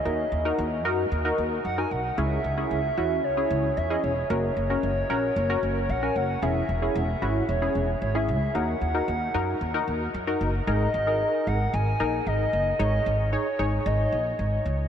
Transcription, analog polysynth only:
X:1
M:4/4
L:1/16
Q:1/4=113
K:D#phr
V:1 name="Analog polysynth"
[DFA]2 z [DFA]2 z [DFA]2 z [DFA]2 z2 [DFA]2 z | [CEG]2 z [CEG]2 z [CEF]2 z [CEG]2 z2 [CEG]2 z | [CFA]2 z [CFA]2 z [CFA]2 z [CFA]2 z2 [CFA]2 z | [CEG]2 z [CEG]2 z [CEF]2 z [CEG]2 z2 [CEG]2 z |
[DFA]2 z [DFA]2 z [DFA]2 z [DFA]2 z2 [DFA]2 z | [DGA]2 z [DGA]4 z3 [DGA]3 z3 | [DGc]2 z2 [DGc] z [DGc]4 z6 |]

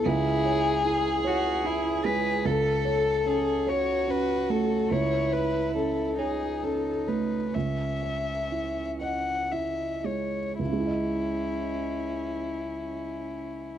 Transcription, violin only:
X:1
M:6/8
L:1/8
Q:3/8=46
K:C#m
V:1 name="Violin"
G3 F E G | A3 c B A | c B A G A B | e3 f e c |
E6 |]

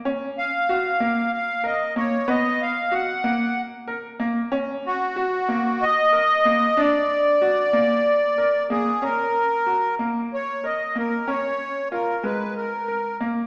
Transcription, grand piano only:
X:1
M:7/8
L:1/8
Q:1/4=93
K:Bbphr
V:1 name="Grand piano"
D2 G B,2 B B, | =B,2 ^F _B,2 B B, | D2 G B,2 B B, | =D2 G B,2 B B, |
D2 G B,2 B B, | D2 F A,2 B B, |]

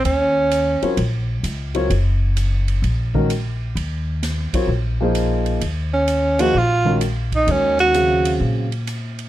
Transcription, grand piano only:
X:1
M:4/4
L:1/8
Q:"Swing" 1/4=129
K:Ebdor
V:1 name="Grand piano"
z3 [G,CFBd] z3 [G,CFBd] | z4 z [E,A,DGB] z2 | z3 [G,CFBd] z [F,B,EAc]3 | z3 [F,B,EAc] z [E,A,DGB] z2 |
[E,A,DGB]2 [D,G,CAf]3 z3 |]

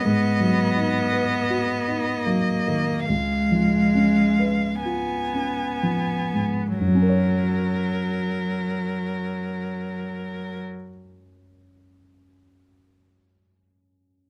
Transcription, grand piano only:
X:1
M:4/4
L:1/16
Q:1/4=32
K:F#
V:1 name="Grand piano"
G,, F, D B F D F, D, C,, E, C B E C E, G,, | [F,,F,CAc]16 |]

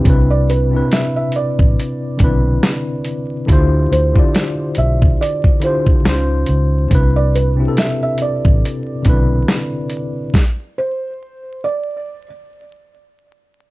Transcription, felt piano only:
X:1
M:4/4
L:1/16
Q:"Swing 16ths" 1/4=70
K:C
V:1 name="Felt piano"
z d B2 e e d8- d2 | z2 c4 e2 d2 c2 z4 | z d B2 e e d8- d2 | z2 c4 d3 z6 z |]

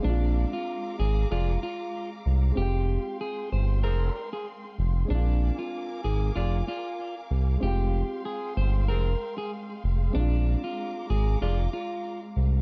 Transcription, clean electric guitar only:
X:1
M:4/4
L:1/16
Q:"Swing 16ths" 1/4=95
K:Bbmix
V:1 name="Clean electric guitar"
D3 F3 A2 F2 F3 z3 | G4 A2 c2 B3 A z4 | D3 F3 A2 F2 F3 z3 | G4 A2 c2 B3 A z4 |
D3 F3 A2 F2 F3 z3 |]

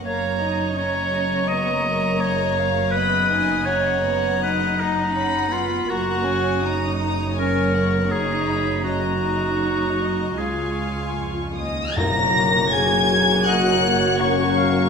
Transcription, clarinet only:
X:1
M:4/4
L:1/8
Q:1/4=81
K:F#
V:1 name="Clarinet"
c2 c2 d2 c2 | B2 c2 B D2 E | F3 z A2 G2 | F4 G2 z2 |
z4 d c f e |]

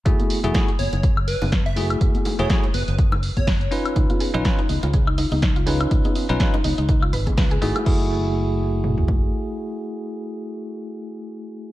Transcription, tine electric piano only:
X:1
M:4/4
L:1/16
Q:"Swing 16ths" 1/4=123
K:F#dor
V:1 name="Tine electric piano"
[A,EFG]3 [A,EFG] [A,EFG] z8 z [A,EFG]2- | [A,EFG]3 [A,EFG] [A,EFG] z8 z [CD^EB]2- | [CD^EB]3 [CDEB] [CDEB] z8 z [CDEB]2- | [CD^EB]3 [CDEB] [CDEB] z8 z [A,=EFG]2 |
[A,EFG]16- | [A,EFG]16 |]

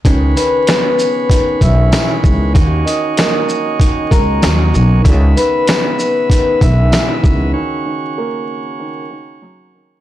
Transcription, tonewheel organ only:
X:1
M:4/4
L:1/8
Q:"Swing 16ths" 1/4=96
K:C#dor
V:1 name="Tonewheel organ"
[CB]8 | [CF]8 | [B,e]8 | [CF]8 |]
V:2 name="Tonewheel organ" clef=bass
C,8 | D,8 | C,8- | C,8 |]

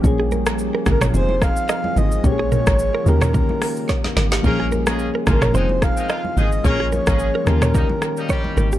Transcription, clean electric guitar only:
X:1
M:4/4
L:1/16
Q:"Swing 16ths" 1/4=109
K:Bbdor
V:1 name="Clean electric guitar"
z A B z2 B z d c2 z2 e2 z2 | z A B z2 B z d B2 z2 d z B G | z A B z2 B z d c2 z2 e2 z2 | z A B z2 B z d B2 z2 d z B G |]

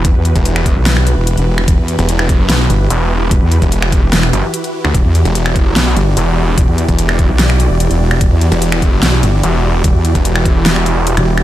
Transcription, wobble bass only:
X:1
M:4/4
L:1/16
Q:1/4=147
K:Em
V:1 name="Wobble bass" clef=bass
E,,, E,,2 z4 B,,,4 E,,,2 E,,,3 | E,,, E,,2 z6 z G,,,2 z4 | E,,, E,,2 z4 E,,,3 z6 | E,,, E,,2 z6 z G,,,2 z4 |
E,,, E,,2 z4 B,,,4 E,,,2 E,,,3 | E,,, E,,2 z6 z G,,,2 z4 | E,,, E,,2 z8 z2 E,,,3 |]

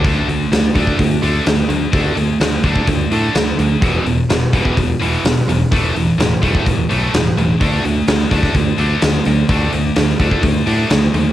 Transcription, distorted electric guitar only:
X:1
M:4/4
L:1/8
Q:1/4=127
K:Ddor
V:1 name="Distorted electric guitar" clef=bass
[D,A,D] [D,A,] [D,A,] [D,A,D] [D,A,] [D,A,D] [D,A,] [D,A,] | [D,A,D] [D,A,] [D,A,] [D,A,D] [D,A,] [D,A,D] [D,A,] [D,A,] | [E,,B,,E,] [E,,B,,] [E,,B,,] [E,,B,,E,] [E,,B,,] [E,,B,,E,] [E,,B,,] [E,,B,,] | [A,,E,A,] [A,,E,] [A,,E,] [A,,E,A,] [A,,E,] [A,,E,A,] [A,,E,] [A,,E,] |
[D,A,D] [D,A,] [D,A,] [D,A,D] [D,A,] [D,A,D] [D,A,] [D,A,] | [D,A,D] [D,A,] [D,A,] [D,A,D] [D,A,] [D,A,D] [D,A,] [D,A,] |]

